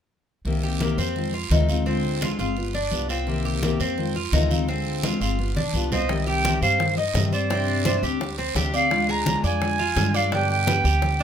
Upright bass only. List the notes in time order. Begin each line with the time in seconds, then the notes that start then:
0.45 C2
0.98 F2
1.50 D2
2.39 G1
2.92 C2
3.80 F2
4.32 D2
5.20 G1
5.56 B1
5.73 C2
6.62 G2
7.14 G2
8.03 D2
8.55 D2
9.44 F2
9.96 G2
10.84 D2